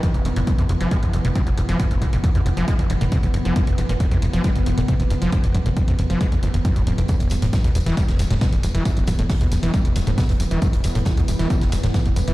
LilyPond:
<<
  \new Staff \with { instrumentName = "Ambient pad" } { \clef bass \time 4/4 \key c \major \tempo 4 = 136 <e b>1~ | <e b>1~ | <e b>1~ | <e b>1 |
<e b>1~ | <e b>1~ | <e b>1 | }
  \new Staff \with { instrumentName = "Acid bass" } { \clef bass \time 4/4 \key c \major f,16 f,,16 f,16 ais,16 dis,16 c16 f,16 f16 aes16 f,,16 f,16 ais,16 c16 f,16 f,16 f16 | f,16 f,,16 f,16 ais,16 dis,16 c16 f,16 f16 aes16 f,,16 f,16 ais,16 c16 f,16 f,16 f16 | f,16 f,,16 f,16 ais,16 dis,16 c16 f,16 f16 aes16 f,,16 f,16 ais,16 c16 f,16 f,16 f16 | f,16 f,,16 f,16 ais,16 dis,16 c16 f,16 f16 aes16 f,,16 dis,16 dis,16 f,16 ais,16 f,16 f,16 |
e,16 e,,16 e,16 a,16 d,16 b,16 e,16 e16 g16 e,,16 e,16 a,16 b,16 e,16 e,16 e16 | e,16 e,,16 e,16 a,16 d,16 b,16 e,16 e16 g16 e,,16 e,16 a,16 b,16 e,16 e,16 e16 | e,16 e,,16 e,16 a,16 d,16 b,16 e,16 e16 g16 e,,16 e,16 a,16 b,16 e,16 e,16 e16 | }
  \new Staff \with { instrumentName = "Analog synth bass" } { \clef bass \time 4/4 \key c \major r16 f,,16 f,,16 f,,16 r16 f,16 f,,16 f,,16 r16 g,,16 f,,16 f,,16 r16 f,,16 f,,16 f,,16 | r16 f,,16 f,,16 f,,16 r16 f,16 f,,16 f,,16 r16 g,,16 f,,16 f,,16 r16 f,,16 f,,16 f,,16 | r16 f,,16 f,,16 f,,16 r16 f,16 f,,16 f,,16 r16 g,,16 f,,16 f,,16 r16 f,,16 f,,16 f,,16 | r16 f,,16 f,,16 f,,16 r16 f,16 f,,16 f,,16 r16 f,16 g,,16 f,,16 r16 f,,16 dis,,16 f,,16 |
r16 e,,16 e,,16 e,,16 r16 e,16 e,,16 e,,16 r16 f,,16 e,,16 e,,16 r16 e,,16 e,,16 e,,16 | r16 e,,16 e,,16 e,,16 r16 e,16 e,,16 e,,16 r16 f,,16 e,,16 e,,16 r16 e,,16 e,,16 e,,16 | r16 e,,16 e,,16 e,,16 r16 e,16 e,,16 e,,16 r16 f,,16 e,,16 e,,16 r16 e,,16 e,,16 e,,16 | }
  \new DrumStaff \with { instrumentName = "Drums" } \drummode { \time 4/4 <hh bd>16 hh16 hh16 hh16 <hh bd>16 hh16 hh16 hh16 <hh bd>16 hh16 hh16 hh16 <hh bd>16 hh16 hh16 hh16 | <hh bd>16 hh16 <hh bd>16 hh16 <hh bd>16 hh16 hh16 hh16 <hh bd>16 hh16 hh16 hh16 <hh bd>16 hh16 hh16 hh16 | <hh bd>16 hh16 hh16 hh16 <hh bd>16 hh16 hh16 hh16 <hh bd>16 hh16 hh16 hh16 <hh bd>16 hh16 hh16 hh16 | <hh bd>16 hh16 <hh bd>16 hh16 <hh bd>16 hh16 hh16 hh16 <hh bd>16 hh16 hh16 hh16 <hh bd>16 hh16 hh16 hh16 |
<hh bd tamb>16 hh16 <hho tamb>16 hh16 <hh bd sn tamb>16 hh16 <hho tamb>16 <hh sn>16 <hh bd tamb>16 <hh sn>16 <hho sn tamb>16 <hh sn>16 <hh bd sn tamb>16 hh16 <hho tamb>16 hh16 | <hh bd tamb>16 hh16 <hho bd tamb>16 hh16 <hh hho bd sn>16 hh16 <hho sn tamb>16 <hh sn>16 <hh bd tamb>16 hh16 <hho sn tamb>16 hh16 <hh bd sn tamb>16 hh16 <hho tamb>16 hh16 | <hh bd tamb>16 hh16 <hho tamb>16 hh16 <hh bd sn tamb>16 hh16 <hho tamb>16 <hh sn>16 <hh bd tamb>16 <hh sn>16 <hho sn tamb>16 <hh sn>16 <hh bd sn tamb>16 hh16 <hho tamb>16 hh16 | }
>>